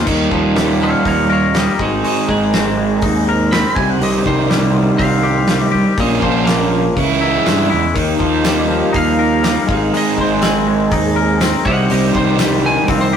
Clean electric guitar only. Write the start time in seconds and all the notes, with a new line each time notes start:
0.06 D#3
0.31 F3
0.56 G3
0.81 F3
1.06 D#4
1.30 A#4
1.55 G3
1.79 G#3
2.04 G#3
2.29 G#3
2.54 C4
2.78 G#3
3.03 D#4
3.29 A#4
3.53 C4
3.77 C3
4.02 C3
4.26 D#3
4.50 G3
4.74 D#3
4.99 C4
5.23 G4
5.48 G3
5.72 G4
5.98 A#2
6.23 F3
6.47 A#3
6.71 F3
6.96 C#3
7.21 E4
7.45 G#3
7.70 E4
7.94 D#3
8.19 F3
8.45 G3
8.68 F3
8.93 D#4
9.19 A#4
9.43 G3
9.67 G#3
9.94 G#3
10.17 G#3
10.41 C4
10.67 G#3
10.92 D#4
11.16 A#4
11.41 C4
11.66 C3
11.90 C3
12.15 D#3
12.40 G3
12.66 D#3
12.89 C4
13.13 G4